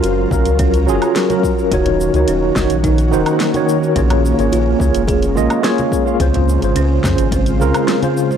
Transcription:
Already playing: F#3 C#4 F4 A#4
0.03 F#1 F#4, closed hi-hat, shaker
0.31 A#1 F#3 C#4 A#4 F5, kick, high conga, shaker
0.45 C#2, closed hi-hat, shaker
0.59 C#4, kick, closed hi-hat, shaker
0.74 closed hi-hat, shaker
0.87 F#1 F#3 C#4 F4 G#4, high conga, shaker
1.02 closed hi-hat, low woodblock, shaker
1.16 F4, snare, closed hi-hat, shaker
1.30 F#3 C#4 F4 A#4, closed hi-hat, high conga, shaker
1.43 kick, shaker
1.59 shaker
1.71 D#1 D#3 A#3 C#4 D#4 F#4 C#5, kick, closed hi-hat, high conga, shaker
1.86 closed hi-hat, low conga
2.01 shaker
2.14 C#2 D#3 D#4 F#4 C#5, closed hi-hat, high conga, shaker
2.28 D#1 C#4, closed hi-hat, shaker
2.55 F#1 D#3 D#4 F#4 C#5, kick, snare, high conga, shaker
2.70 A#1, closed hi-hat, shaker
2.84 D#4, kick, closed hi-hat, shaker
2.98 closed hi-hat, shaker
3.11 D#1 D#3 D#4 F#4 C5, high conga, shaker
3.26 closed hi-hat, low woodblock, shaker
3.40 F#4, snare, closed hi-hat, shaker
3.54 D#3 D#4 F#4 C#5, closed hi-hat, high conga, shaker
3.69 shaker
3.83 shaker
3.96 A#1 G#3 A#3 C#4 F4 G#4 C#5, kick, closed hi-hat, high conga, shaker
4.10 closed hi-hat, low conga, low woodblock
4.25 shaker
4.38 G#1 A#3 F4 G#4 C#5, closed hi-hat, high conga, shaker
4.52 A#1 F4, closed hi-hat, shaker
4.79 C#2 A#3 F4 G#4 C#5, kick, high conga, shaker
4.94 F1, closed hi-hat, shaker
5.08 G#4, kick, closed hi-hat, shaker
5.23 closed hi-hat, shaker
5.35 A#1 A#3 F4 G#4 D#5, high conga, shaker
5.50 closed hi-hat, low woodblock, shaker
5.62 A#3 F4 G#4 C#5, snare, closed hi-hat, shaker
5.78 closed hi-hat, high conga, shaker
5.92 kick, shaker
6.05 A#3 F4 G#4 F5, shaker
6.19 C#2 C#3 C4 F4 C5, kick, closed hi-hat, high conga, shaker
6.34 closed hi-hat, muted conga, low conga
6.49 shaker
6.62 G#1 C#3 F4 C5, closed hi-hat, high conga, shaker
6.76 C#2 C#4, closed hi-hat, muted conga, shaker
7.04 F2 C#3 C#4 F4 C5, kick, snare, high conga, shaker
7.18 G#1, closed hi-hat, shaker
7.32 C4, kick, closed hi-hat, muted conga, shaker
7.46 closed hi-hat, shaker
7.60 C#2 C#3 F4 A#4, high conga, shaker
7.74 closed hi-hat, muted conga, low woodblock, shaker
7.88 C4, snare, closed hi-hat, shaker
8.02 C#3 F4 C5, closed hi-hat, high conga, shaker
8.17 shaker
8.31 muted conga, shaker

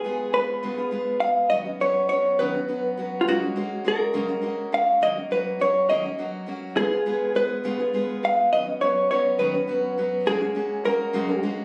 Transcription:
Already playing: G#4
0.04 G#3 B3 F4 G#4
0.33 G#3 B3 F4 G#4 B4
0.63 C#3 G#3 B3 F4 G#4
0.77 B3 F4 G#4
0.91 G#3 B3 F4 G#4
1.20 G#3 B3 F4 G#4 F5
1.50 D#3 F#3 B3 C#4 F#4 D#5
1.65 B3 C#4 F#4
1.80 F#3 B3 C#4 F#4 C#5
2.09 F#3 B3 C#4 F#4 C#5
2.39 D#3 F#3 B3 C#4 F#4 B4
2.54 B3 C#4 F#4
2.68 F#3 B3 C#4 F#4
2.97 F#3 B3 C#4 F#4
3.21 F4
3.27 F#2 C#3 G#3 A#3 C#4 F#4
3.42 G#3 A#3 C#4 F#4
3.56 G#3 A#3 C#4 F#4
3.84 G#3 A#3 C#4 F#4 A#4
4.13 F#2 C#3 G#3 A#3 C#4 F#4
4.28 G#3 A#3 C#4 F#4
4.42 G#3 A#3 C#4 F#4
4.72 G#3 A#3 C#4 F#4 F5
5.01 D#3 F#3 A#3 C#4 F#4 D#5
5.16 A#3 C#4 F#4
5.31 F#3 A#3 C#4 F#4 B4
5.59 F#3 A#3 C#4 F#4 C#5
5.89 D#3 F#3 A#3 C#4 F#4 D#5
6.04 A#3 C#4 F#4
6.18 F#3 A#3 C#4 F#4
6.46 F#3 A#3 C#4 F#4
6.76 C#3 G#3 B3 F4 G#4
6.91 B3 F4 G#4
7.06 G#3 B3 F4 G#4
7.35 G#3 B3 F4 G#4 B4
7.64 C#3 G#3 B3 F4 G#4
7.79 B3 F4 G#4
7.94 G#3 B3 F4 G#4
8.23 G#3 B3 F4 G#4 F5
8.53 D#3 F#3 B3 C#4 F#4 D#5
8.66 B3 C#4 F#4
8.81 F#3 B3 C#4 F#4 C#5
9.11 F#3 B3 C#4 F#4 C#5
9.39 D#3 F#3 B3 C#4 F#4 B4
9.54 B3 C#4 F#4
9.67 F#3 B3 C#4 F#4
9.98 F#3 B3 C#4 F#4
10.26 F#2 C#3 G#3 A#3 C#4 F#4 G#4
10.40 G#3 A#3 C#4 F#4
10.55 G#3 A#3 C#4 F#4
10.84 G#3 A#3 C#4 F#4 A#4
11.13 F#2 C#3 G#3 A#3 C#4 F#4
11.28 G#3 A#3 C#4 F#4
11.43 G#3 A#3 C#4 F#4

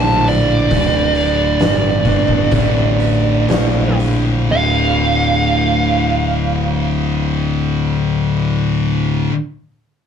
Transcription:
Already playing: A#1 D2 A2 D3 G#5
0.04 A5
0.28 D5, open hi-hat
0.69 D1 D2 A2 D3, kick, open hi-hat
1.15 open hi-hat
1.59 G1, snare, open hi-hat
2.03 D2 A2 D3, kick, open hi-hat
2.28 kick
2.51 A1 D2 A2 D3, kick, open hi-hat
3.00 open hi-hat
3.48 A#1 D2 A2 D3, snare, open hi-hat
3.99 open hi-hat
4.51 D1 D2 A2 D3 F5

